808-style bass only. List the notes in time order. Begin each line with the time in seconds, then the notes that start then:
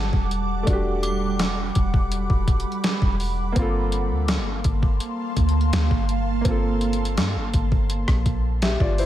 Already playing: G1
0.13 E1
0.67 E1
1.76 E1
2.30 E1
3.02 E1
3.56 G1
4.11 D2
4.38 G1
4.65 G1
5.37 D2
5.73 D2
5.91 G1
6.45 G1
7.18 G2
7.36 G1
7.54 G1
8.08 A#1
8.80 G1